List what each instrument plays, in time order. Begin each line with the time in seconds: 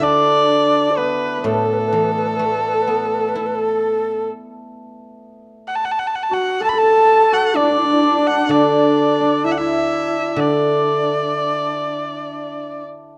Already playing: guzheng F#3 D4 F#4 A4 D5, hammered dulcimer E4 F#4 A4
0.00 guzheng D3, hammered dulcimer D4, erhu D5
0.04 xiao D4
0.91 xiao D5
0.97 hammered dulcimer B3, xiao B4, erhu B4
1.38 hammered dulcimer B3
1.44 guzheng A2, hammered dulcimer A3, erhu A4, xiao A4
1.54 xiao B4
1.65 xiao A4
1.73 xiao B4
1.80 xiao A4
1.88 xiao B4
1.93 guzheng E3, xiao A4
2.04 xiao B4
2.12 xiao A4
2.18 xiao B4
2.28 xiao A4
2.36 guzheng A3, xiao B4
2.45 xiao A4
2.52 xiao B4
2.61 xiao A4
2.68 xiao B4
2.75 xiao A4
2.82 xiao B4
2.87 guzheng B3, xiao A4
2.97 xiao B4
3.06 xiao A4
3.14 xiao B4
3.21 xiao A4
3.29 xiao B4
3.35 guzheng E4, xiao A4
3.46 xiao B4
3.55 xiao A4
5.68 erhu F#5
5.75 erhu A5
5.85 erhu F#5
5.91 erhu A5
5.99 erhu F#5
6.07 erhu A5
6.16 erhu F#5
6.23 erhu A5
6.30 xiao F#4, hammered dulcimer F#4, erhu F#5
6.61 xiao A4, hammered dulcimer A4, erhu A5
6.69 xiao A4, erhu B5
6.73 hammered dulcimer A4
6.78 erhu A5
6.83 hammered dulcimer A4
6.90 hammered dulcimer A4
6.97 hammered dulcimer A4
7.05 hammered dulcimer A4
7.12 hammered dulcimer A4
7.19 hammered dulcimer A4
7.32 hammered dulcimer F#4, erhu F#5
7.54 xiao D4, hammered dulcimer D4, erhu D5
7.60 hammered dulcimer D4, xiao E4
7.69 xiao D4, hammered dulcimer D4
7.77 hammered dulcimer D4, xiao E4
7.85 hammered dulcimer D4, xiao D4
7.91 hammered dulcimer D4, xiao E4
8.00 hammered dulcimer D4, xiao D4
8.07 hammered dulcimer D4
8.11 hammered dulcimer D4, xiao E4
8.19 xiao D4, hammered dulcimer D4
8.27 hammered dulcimer D4, erhu F#5
8.37 hammered dulcimer D4
8.48 guzheng D3, xiao D4, hammered dulcimer D4, erhu D5
9.20 hammered dulcimer D4
9.45 xiao E4, hammered dulcimer E4, erhu E5
9.52 erhu F#5
9.58 xiao E4, hammered dulcimer E4, erhu E5
10.36 guzheng D3, hammered dulcimer D4, xiao D4, erhu D5